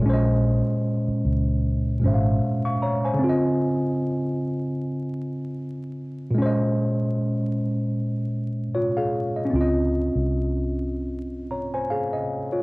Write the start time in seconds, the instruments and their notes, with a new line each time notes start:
0.00 tine electric piano A#2 G#3
0.06 fingered electric bass A#1, tine electric piano C#4 C5
0.14 tine electric piano D#5
1.08 muted fingered electric bass stroke
1.25 fingered electric bass C#2
2.00 fingered electric bass G#1, tine electric piano A#2 G#3
2.04 tine electric piano C#4 C5 E5
2.14 tine electric piano F5
2.65 tine electric piano F5 C#6
2.82 tine electric piano C#5 A#5
3.05 tine electric piano C5 G#5
3.14 tine electric piano C#3
3.19 tine electric piano C4
3.24 tine electric piano F4
3.30 tine electric piano D#5
6.30 tine electric piano A#2 G#3
6.38 tine electric piano C#4 C5
6.46 tine electric piano D#5
8.75 tine electric piano F4 C#5
8.97 tine electric piano G#4 F5
9.37 tine electric piano D#5
9.45 tine electric piano C#4
9.50 fingered electric bass C#2, tine electric piano C4
9.56 tine electric piano F4
9.61 tine electric piano D#5
10.15 fingered electric bass C2
11.51 tine electric piano C#5 A#5
11.74 tine electric piano C5 G#5
11.90 tine electric piano G#4 F5
12.13 tine electric piano D#5
12.52 tine electric piano F4 C#5